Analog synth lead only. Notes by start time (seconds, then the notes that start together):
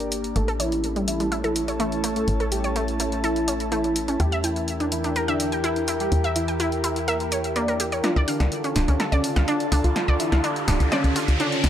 0.36 A4
0.60 E4
1.08 E4
1.44 E4
1.80 E4
2.16 A4
2.52 G4
3.24 E4
3.72 E4
4.20 G4
4.44 E4
4.92 E4
5.28 D4
5.64 E4
6.00 G4
6.36 E4
7.08 A#4
7.56 D5
8.04 F4
8.28 D4
8.76 D4
9.12 C#4
9.48 D4
9.84 F4
10.20 E4
10.92 C#4
11.40 C#4